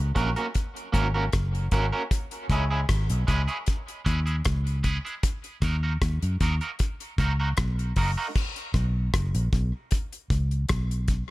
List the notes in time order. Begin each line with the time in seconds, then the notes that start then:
Already playing: C#2
0.15 A#1 A#3 C#4 F#4 A#4, kick, closed hi-hat
0.36 A#3 C#4 F#4 A#4, closed hi-hat
0.54 kick, closed hi-hat
0.76 closed hi-hat
0.92 G#1 A#3 C#4 F#4 A#4, kick, closed hi-hat
1.14 A#3 C#4 F#4 A#4
1.32 F#1, kick, cross-stick, closed hi-hat
1.55 closed hi-hat
1.71 G#1 A#3 C#4 F#4 A#4, kick, closed hi-hat
1.92 A#3 C#4 F#4 A#4
2.11 kick, closed hi-hat
2.31 closed hi-hat
2.50 C#2 G#3 C#4 E4 G#4, kick, closed hi-hat
2.70 G#3 C#4 E4 G#4
2.89 G#1, kick, cross-stick, closed hi-hat
3.10 B1, closed hi-hat
3.27 C#2 G#3 C#4 E4 G#4, kick, closed hi-hat
3.48 G#3 C#4 E4 G#4, closed hi-hat
3.66 kick, closed hi-hat
3.88 closed hi-hat
4.05 D#2 G#3 C#4 E4 G#4, kick, closed hi-hat
4.26 G#3 C#4 E4 G#4, closed hi-hat
4.45 C#2, kick, cross-stick, closed hi-hat
4.67 closed hi-hat
4.83 G#3 C#4 E4 G#4, kick, closed hi-hat
5.05 G#3 C#4 E4 G#4, closed hi-hat
5.23 kick, closed hi-hat
5.44 closed hi-hat
5.62 D#2 A#3 D#4 F#4 A#4, kick, cross-stick, closed hi-hat
5.83 A#3 D#4 F#4 A#4
6.02 D#2, kick, cross-stick, closed hi-hat
6.22 F#2, closed hi-hat
6.40 D#2 A#3 D#4 F#4 A#4, kick, closed hi-hat
6.61 A#3 D#4 F#4 A#4, closed hi-hat
6.79 kick, closed hi-hat
7.00 closed hi-hat
7.18 C#2 A#3 D#4 F#4 A#4, kick, closed hi-hat
7.40 A#3 D#4 F#4 A#4
7.57 B1, kick, cross-stick, closed hi-hat
7.79 closed hi-hat
7.96 F#1 A#3 D#4 F#4 A#4, kick, open hi-hat
8.17 A#3 D#4 F#4 A#4
8.35 kick, crash
8.56 closed hi-hat
8.74 B1, kick, cross-stick, closed hi-hat
9.14 F#1, kick, cross-stick, closed hi-hat
9.35 A#1, closed hi-hat
9.53 B1, kick, closed hi-hat
9.91 kick, closed hi-hat
10.13 closed hi-hat
10.30 C#2, kick, closed hi-hat
10.51 closed hi-hat
10.69 B1, kick, cross-stick, closed hi-hat
10.91 closed hi-hat
11.08 kick, closed hi-hat